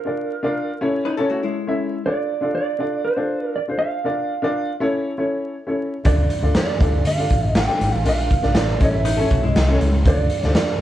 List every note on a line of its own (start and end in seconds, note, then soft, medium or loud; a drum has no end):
0.00 0.77 A#4 medium
0.05 0.32 D4 medium
0.05 0.32 F4 medium
0.05 0.33 A#4 medium
0.05 0.33 D5 medium
0.43 0.69 D4 medium
0.43 0.70 F4 medium
0.43 0.70 A#4 medium
0.43 0.70 D5 medium
0.81 1.11 C#4 loud
0.81 1.11 E4 medium
0.81 1.11 A4 medium
0.81 1.12 C#5 loud
1.05 1.18 D#4 medium
1.05 1.17 B4 medium
1.17 1.30 C#4 medium
1.17 1.53 C#4 medium
1.17 1.53 E4 medium
1.17 1.30 A4 medium
1.17 1.54 A4 medium
1.17 1.54 C#5 medium
1.30 1.42 A3 medium
1.30 1.42 F#4 medium
1.43 2.03 G#3 medium
1.43 2.03 E4 medium
1.67 1.94 C#4 medium
1.67 1.94 E4 medium
1.67 1.94 A4 medium
1.67 1.95 E5 medium
2.06 2.32 D4 medium
2.06 2.32 F4 medium
2.06 2.32 A4 medium
2.06 2.52 D5 medium
2.06 2.33 D5 medium
2.41 2.68 D4 medium
2.41 2.69 F4 medium
2.41 2.69 A4 medium
2.41 2.69 D5 medium
2.55 3.02 D5 loud
2.79 3.06 D4 medium
2.79 3.06 F4 medium
2.79 3.07 A4 medium
2.79 3.07 D5 medium
3.05 3.47 C5 medium
3.16 3.52 D4 medium
3.16 3.53 F4 medium
3.16 3.53 A4 medium
3.16 3.53 D5 medium
3.47 3.57 A#4 medium
3.56 3.62 D5 medium
3.68 3.94 D4 medium
3.68 3.94 F4 medium
3.68 3.95 A4 medium
3.68 3.95 C5 medium
3.79 4.76 F5 loud
4.04 4.31 D4 medium
4.04 4.32 F4 medium
4.04 4.32 A#4 medium
4.04 4.32 D5 medium
4.42 4.69 D4 medium
4.42 4.69 F4 medium
4.42 4.69 A#4 medium
4.42 4.70 D5 loud
4.80 5.10 C#4 medium
4.80 5.10 E4 medium
4.80 5.11 A4 medium
4.80 5.11 C#5 loud
5.18 5.53 C#4 medium
5.18 5.53 E4 medium
5.18 5.53 A4 medium
5.18 5.54 C#5 medium
5.67 5.94 C#4 medium
5.67 5.94 E4 medium
5.67 5.94 A4 medium
5.67 5.94 C#5 medium
6.04 6.26 D2 loud
6.04 6.31 D4 medium
6.04 6.31 F4 medium
6.04 6.32 A4 medium
6.04 6.32 D5 medium
6.04 6.53 D5 medium
6.04 kick loud
6.04 closed hi-hat medium
6.30 closed hi-hat medium
6.42 6.53 D2 medium
6.42 6.69 D4 medium
6.42 6.69 F4 medium
6.42 6.70 A4 medium
6.42 6.70 D5 medium
6.55 6.76 F2 medium
6.55 7.07 D5 medium
6.55 snare loud
6.55 closed hi-hat medium
6.80 7.02 D2 medium
6.80 7.07 D4 medium
6.80 7.07 F4 medium
6.80 7.08 A4 medium
6.80 7.08 D5 medium
6.80 kick medium
6.80 closed hi-hat medium
7.05 7.27 D3 loud
7.05 7.57 F5 medium
7.05 closed hi-hat loud
7.18 7.53 D4 medium
7.18 7.54 F4 medium
7.18 7.54 A4 medium
7.18 7.54 D5 medium
7.18 closed hi-hat soft
7.30 7.52 A1 medium
7.30 kick medium
7.30 closed hi-hat medium
7.55 7.66 A1 medium
7.55 8.03 G5 medium
7.55 snare loud
7.55 closed hi-hat medium
7.68 7.94 D4 medium
7.68 7.94 F4 medium
7.68 7.94 A4 medium
7.68 7.95 D5 medium
7.81 7.91 G#1 loud
7.81 closed hi-hat medium
7.93 8.04 A1 medium
8.05 8.26 A#1 medium
8.05 8.32 D4 medium
8.05 8.32 F4 medium
8.05 8.32 A#4 medium
8.05 8.32 D5 medium
8.05 8.54 F5 loud
8.05 closed hi-hat medium
8.30 kick medium
8.30 closed hi-hat medium
8.43 8.54 A#1 medium
8.43 8.69 D4 medium
8.43 8.69 F4 medium
8.43 8.69 A#4 medium
8.43 8.70 D5 medium
8.43 snare soft
8.55 8.77 A1 medium
8.55 8.83 D5 medium
8.55 snare loud
8.55 closed hi-hat medium
8.80 9.23 A1 medium
8.80 9.11 C#4 medium
8.80 9.11 E4 medium
8.80 9.11 A4 medium
8.80 9.11 C#5 medium
8.80 9.47 E5 medium
8.80 kick medium
8.80 closed hi-hat medium
9.05 9.17 D#4 medium
9.05 9.17 B4 medium
9.05 closed hi-hat loud
9.17 9.30 C#4 medium
9.17 9.54 C#4 medium
9.17 9.54 E4 medium
9.17 9.29 A4 medium
9.17 9.54 A4 medium
9.17 9.55 C#5 medium
9.30 9.52 B1 medium
9.30 9.42 A3 medium
9.30 9.42 F#4 medium
9.30 kick medium
9.30 closed hi-hat medium
9.43 10.03 G#3 medium
9.43 10.02 E4 medium
9.43 9.78 D#5 medium
9.56 9.77 C2 medium
9.56 snare loud
9.56 closed hi-hat medium
9.68 9.95 C#4 medium
9.68 9.94 E4 medium
9.68 9.95 A4 medium
9.68 9.95 C#5 medium
9.81 10.02 C#2 medium
9.81 closed hi-hat medium
10.05 10.27 D2 loud
10.05 10.32 D4 medium
10.05 10.32 F4 medium
10.05 10.32 A4 medium
10.05 10.33 D5 medium
10.05 10.55 D5 medium
10.05 kick loud
10.05 closed hi-hat medium
10.30 closed hi-hat medium
10.43 10.56 D2 medium
10.43 10.70 D4 medium
10.43 10.70 F4 medium
10.43 10.70 A4 medium
10.43 10.70 D5 medium
10.43 snare soft
10.55 10.77 F2 medium
10.55 10.81 D5 loud
10.55 snare loud
10.55 closed hi-hat medium